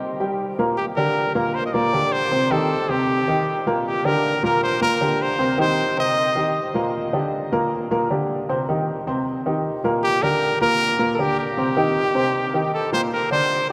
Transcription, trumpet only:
0.00 0.16 G4 medium
0.77 0.86 G4 medium
0.96 1.32 A#4 medium
1.35 1.56 A#4 medium
1.55 1.65 C5 medium
1.66 1.74 D#5 medium
1.73 2.14 D5 loud
2.12 2.53 C5 loud
2.52 2.92 A4 medium
2.91 3.67 G4 loud
3.87 4.07 G4 loud
4.06 4.44 A#4 loud
4.45 4.62 A#4 medium
4.63 4.81 C5 loud
4.82 5.23 A#4 loud
5.22 5.60 C5 loud
5.60 5.96 C5 loud
6.00 6.72 D#5 loud
10.03 10.24 G4 loud
10.22 10.60 A#4 loud
10.61 11.17 A#4 loud
11.15 11.22 A4 medium
11.20 11.39 G4 loud
11.39 12.70 G4 loud
12.74 12.91 A4 medium
12.93 13.02 C5 loud
13.13 13.30 A#4 loud
13.32 13.67 C5 loud

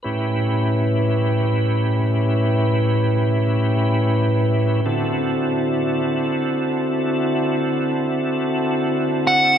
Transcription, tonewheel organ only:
0.03 4.81 A2 medium
0.03 4.81 C#4 medium
0.03 4.81 E4 medium
0.03 4.81 G4 soft
0.03 4.80 B4 medium
4.86 9.58 D3 medium
4.86 9.58 C4 medium
4.86 9.58 E4 medium
4.86 9.58 F#4 medium
4.86 9.58 A4 medium

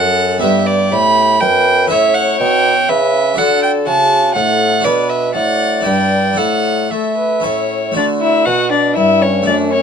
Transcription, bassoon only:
0.00 0.41 F#2 medium
0.43 0.91 G2 medium
0.92 1.40 A2 medium
1.41 1.90 F#2 medium
1.91 2.37 A2 medium
2.40 2.75 B2 medium
2.89 3.37 C#3 medium
3.38 3.88 D3 medium
3.87 4.35 C#3 medium
4.35 4.84 A2 medium
4.85 5.34 B2 medium
5.35 5.85 A2 medium
5.86 6.37 G2 medium
6.38 6.90 A2 soft
6.91 7.43 A3 soft
7.45 7.95 A2 soft
7.96 8.43 D3 medium
8.47 8.96 B2 medium
8.96 9.46 G2 medium
9.47 9.81 F#2 medium

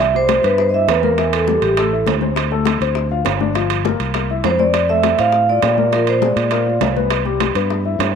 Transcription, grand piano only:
0.15 0.39 G3 medium
0.15 0.39 G4 medium
0.44 0.68 B3 medium
0.44 0.68 B4 medium
0.74 0.98 E4 medium
0.74 0.98 E5 medium
1.03 1.15 A#3 medium
1.03 1.16 A#4 medium
1.18 1.42 E3 medium
1.18 1.43 E4 medium
1.48 1.72 G3 medium
1.48 1.72 G4 medium
1.78 1.90 A3 medium
1.78 1.90 A4 medium
1.92 2.17 E4 medium
1.92 2.17 E5 medium
2.22 2.46 C4 medium
2.22 2.46 C5 medium
2.52 2.76 A3 medium
2.52 2.76 A4 medium
2.81 3.06 C4 medium
2.81 3.06 C5 medium
3.11 3.35 F4 medium
3.11 3.36 F5 medium
3.41 3.53 D4 medium
3.41 3.53 D5 medium
3.55 3.79 F3 medium
3.55 3.79 F4 medium
3.85 4.09 A#3 medium
3.85 4.09 A#4 medium
4.15 4.27 A#3 medium
4.15 4.27 A#4 medium
4.30 4.54 E4 medium
4.30 4.54 E5 medium
4.59 4.84 C4 medium
4.59 4.84 C5 medium
4.89 5.14 A3 medium
4.89 5.14 A4 medium
5.19 5.43 C4 medium
5.19 5.44 C5 medium
5.49 5.73 F4 medium
5.49 5.73 F5 medium
5.78 5.90 A#3 medium
5.78 5.90 A#4 medium
5.93 6.17 F3 medium
5.93 6.17 F4 medium
6.22 6.46 G#3 medium
6.22 6.47 G#4 medium
6.52 6.64 A#3 medium
6.52 6.64 A#4 medium
6.67 6.91 F4 medium
6.67 6.91 F5 medium
6.96 7.21 B3 medium
6.96 7.21 B4 medium
7.25 7.50 G3 medium
7.25 7.50 G4 medium
7.56 7.80 B3 medium
7.56 7.80 B4 medium
7.85 8.10 E4 medium
7.85 8.10 E5 medium

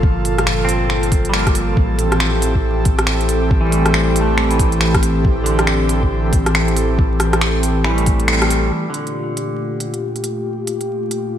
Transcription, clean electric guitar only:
0.65 1.38 C4 medium
1.29 1.95 G3 medium
1.34 1.97 A#3 medium
1.39 2.00 C4 medium
3.61 4.49 E3 medium
3.65 4.62 G3 medium
3.71 4.20 A3 medium
4.21 5.20 A3 medium
4.50 5.49 E3 medium
5.44 6.45 D3 medium
7.85 8.86 E3 medium
7.90 8.89 G3 medium
7.95 8.89 A3 medium
8.90 9.91 D3 medium

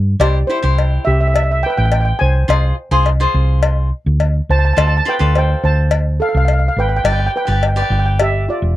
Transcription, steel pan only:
0.20 0.47 G4 medium
0.20 0.50 D5 medium
0.47 1.02 E4 medium
0.47 1.01 C5 medium
1.05 1.13 G4 medium
1.05 1.10 E5 medium
1.11 1.19 E5 medium
1.21 1.26 E5 medium
1.27 1.33 E5 medium
1.34 1.42 E5 medium
1.43 1.50 E5 medium
1.51 1.59 E5 medium
1.63 1.72 B4 medium
1.63 1.69 G5 loud
1.70 1.76 G5 medium
1.77 1.84 G5 loud
1.85 1.91 G5 medium
1.93 1.99 G5 medium
2.01 2.04 G5 medium
2.05 2.13 G5 medium
2.19 3.31 C5 medium
2.19 3.30 G#5 medium
4.50 4.56 C5 medium
4.50 4.57 A5 loud
4.59 4.64 A5 medium
4.65 4.72 A5 medium
4.73 4.78 A5 medium
4.80 4.86 A5 medium
4.87 4.94 A5 medium
4.97 5.03 A5 medium
5.08 5.33 B4 medium
5.08 5.36 G5 loud
5.36 5.61 C5 medium
5.36 5.63 G5 loud
5.64 6.16 C5 medium
5.64 6.22 A5 medium
6.20 6.27 A4 medium
6.20 6.28 F5 medium
6.29 6.35 F5 medium
6.37 6.43 F5 medium
6.45 6.50 F5 medium
6.53 6.58 F5 medium
6.59 6.65 F5 medium
6.68 6.73 F5 medium
6.79 6.84 B4 medium
6.79 6.86 G5 medium
6.89 6.94 G5 medium
6.96 7.01 G5 medium
7.04 7.09 G5 medium
7.12 7.17 G5 medium
7.20 7.24 G5 medium
7.26 7.31 G5 medium
7.36 7.42 B4 medium
7.36 7.43 G5 medium
7.45 7.51 G5 medium
7.52 7.58 G5 medium
7.62 7.66 G5 medium
7.68 7.73 G5 medium
7.77 7.81 G5 medium
7.82 7.88 G5 medium
7.92 7.96 G5 medium
7.99 8.04 G5 medium
8.06 8.11 G5 medium
8.21 8.46 G4 medium
8.21 8.50 E5 medium
8.49 8.77 F4 medium
8.49 8.77 D5 medium

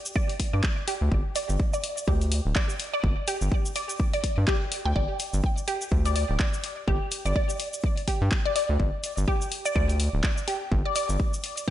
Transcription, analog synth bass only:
0.53 0.62 G2 loud
1.01 1.10 D2 loud
1.12 1.23 G1 loud
1.49 1.57 G1 medium
2.08 2.41 D2 medium
2.45 2.54 D1 medium
3.04 3.15 G1 loud
3.41 3.50 G1 loud
4.38 4.46 G2 medium
4.85 4.94 D2 loud
4.96 5.07 G1 loud
5.33 5.42 G1 loud
5.92 6.25 D2 medium
6.30 6.38 D1 medium
6.88 6.99 G1 loud
7.25 7.34 G1 loud
8.21 8.29 G2 loud
8.69 8.78 D2 loud
8.80 8.91 G1 loud
9.17 9.25 G1 loud
9.76 10.09 D2 medium
10.13 10.22 D1 medium
10.72 10.83 G1 loud
11.09 11.18 G1 loud

